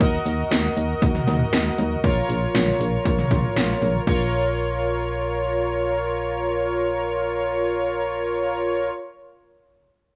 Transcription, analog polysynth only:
0.00 F#4 A#4 D#5
2.04 F4 A#4 C#5
4.07 F4 A#4 C#5

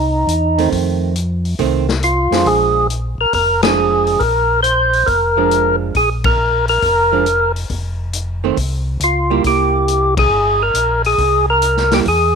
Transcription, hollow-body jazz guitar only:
0.58 D#3 A3 C4
1.59 D#3 A3 C4
2.32 F3 G#3 D4
3.63 F3 G#3 D4
5.37 F3 G#3 D4
7.12 F3 G#3 D4
8.44 D#3 A3 C4
9.30 G3 A#3 E4
9.46 A#3 E4
11.92 G3 A#3 E4

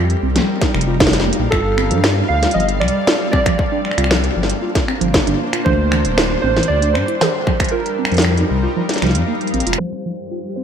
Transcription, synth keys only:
1.51 A4
2.28 F5
2.54 D#5
2.80 D5
3.32 D5
5.65 C5
6.42 C5
6.68 D5
6.94 C5
7.71 A#4
9.78 C5
10.56 C5

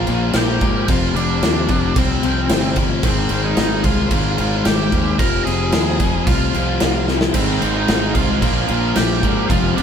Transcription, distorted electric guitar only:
0.07 A#2 F3 A#3
0.34 A#2 F3 A#3
0.61 A#2 F3 A#3
0.88 F2 C3 F3
1.15 F2 C3 F3
1.43 F2 C3 F3
1.70 F2 C3 F3
1.96 F2 C3 F3
2.23 F2 C3 F3
2.50 F2 C3 F3
2.76 F2 C3 F3
3.03 G#2 D#3 G#3
3.30 G#2 D#3 G#3
3.58 G#2 D#3 G#3
3.85 G#2 D#3 G#3
4.12 G#2 D#3 G#3
4.38 G#2 D#3 G#3
4.65 G#2 D#3 G#3
4.93 G#2 D#3 G#3
5.20 F2 C3 F3
5.46 F2 C3 F3
5.73 F2 C3 F3
6.00 F2 C3 F3
6.26 F2 C3 F3
6.54 F2 C3 F3
6.81 F2 C3 F3
7.09 F2 C3 F3
7.35 G#2 D#3 G#3
7.62 G#2 D#3 G#3
7.89 G#2 D#3 G#3
8.16 G#2 D#3 G#3
8.42 A#2 F3 A#3
8.69 A#2 F3 A#3
8.95 A#2 F3 A#3
9.23 A#2 F3 A#3
9.50 F2 C3 F3
9.77 F2 C3 F3

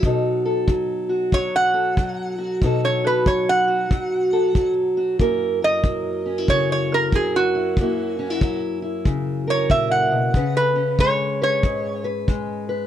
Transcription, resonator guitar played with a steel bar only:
1.34 C#5
1.56 F#5
2.85 C#5
3.07 B4
3.27 C#5
3.49 F#5
5.64 D#5
6.50 C#5
6.72 C#5
6.94 A#4
7.15 G#4
7.36 F#4
9.50 C#5
9.71 E5
9.91 F#5
10.57 B4
11.00 C#5
11.43 C#5

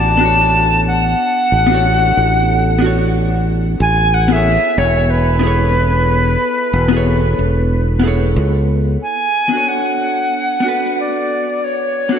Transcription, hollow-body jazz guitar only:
Already playing: B3 D4 F#4 A4 D5
0.17 B3 D4 F#4
0.23 A4 C#5
1.67 B3 D4
1.71 F#4 A4 C#5
2.79 B3 D4 F#4
2.84 A4 C#5
4.28 B3 E4 G#4
4.34 A4 C#5
5.39 B3 E4 G#4
5.45 A4 C#5
6.88 B3 E4
6.93 G#4 A4
6.97 C#5
7.99 B3 E4 G#4
8.05 A4 C#5
9.49 B3 D4
9.53 F#4 A4 C#5
10.60 B3 D4 F#4
10.66 A4 B4
12.09 B3 D4 F#4
12.15 A4

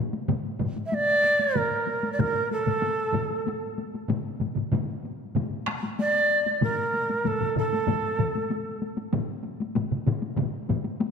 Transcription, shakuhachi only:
0.86 E5
0.94 D5
1.56 A#4
2.13 D5
2.20 A#4
2.52 A4
6.00 D5
6.63 A#4
7.27 A4
7.58 A4

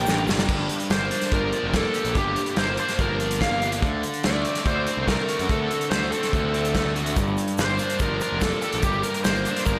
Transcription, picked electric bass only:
0.07 A1
0.28 G1
0.49 G1
0.90 G1
1.32 G1
1.64 F1
2.05 A#1
2.15 G1
2.57 G1
2.99 G1
3.50 G1
3.82 D2
4.24 D2
4.65 D2
4.97 C2
5.39 F#2
5.49 D2
5.91 D2
6.33 D2
6.85 D2
7.17 G1
7.59 G1
8.00 G1
8.32 F1
8.74 A#1
8.83 G1
9.25 G1
9.66 G1

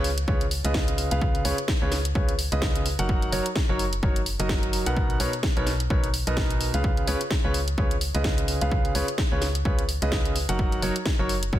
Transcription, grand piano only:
0.28 C#3 F4 G#4 B4 C#5
0.64 C#3 F4 G#4 B4 D#5
1.11 C#3 F4 G#4 B4 F5
1.45 C#3 F4 G#4 B4 C#5
1.82 C#3 F4 G#4 B4 C#5
2.15 C#3 F4 G#4 B4 C#5
2.52 C#3 F4 G#4 B4 D#5
2.99 F#3 D#4 F#4 A#4 F#5
3.32 F#3 D#4 F#4 A#4 C#5
3.69 F#3 D#4 F#4 A#4 C#5
4.03 F#3 D#4 F#4 A#4 C#5
4.40 F#3 D#4 F#4 A#4 D#5
4.86 B2 D#4 A#4 B4 F#5
5.20 B2 D#4 A#4 B4 C#5
5.57 B2 D#4 A#4 B4 C#5
5.90 B2 D#4 A#4 B4 C#5
6.27 B2 D#4 A#4 B4 D#5
6.74 C#3 F4 G#4 B4 F5
7.07 C#3 F4 G#4 B4 C#5
7.44 C#3 F4 G#4 B4 C#5
7.78 C#3 F4 G#4 B4 C#5
8.15 C#3 F4 G#4 B4 D#5
8.61 C#3 F4 G#4 B4 F5
8.95 C#3 F4 G#4 B4 C#5
9.32 C#3 F4 G#4 B4 C#5
9.65 C#3 F4 G#4 B4 C#5
10.02 C#3 F4 G#4 B4 D#5
10.49 F#3 D#4 F#4 A#4 F#5
10.82 F#3 D#4 F#4 A#4 C#5
11.19 F#3 D#4 F#4 A#4 C#5
11.53 F#3 D#4 F#4 A#4 C#5

